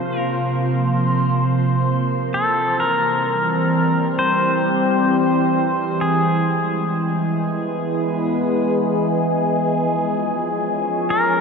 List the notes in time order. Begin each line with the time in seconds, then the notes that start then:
Already playing: C3 F3 A#3 F4 C5
0.19 A#4
2.33 E3 A4
2.69 G3
2.80 A#4
2.88 C4
3.63 G4
3.69 C5
4.19 C5
6.01 G#4
6.12 G#3
7.08 B3
7.68 G#4 B4
9.72 F3
10.27 C#4
11.10 A#4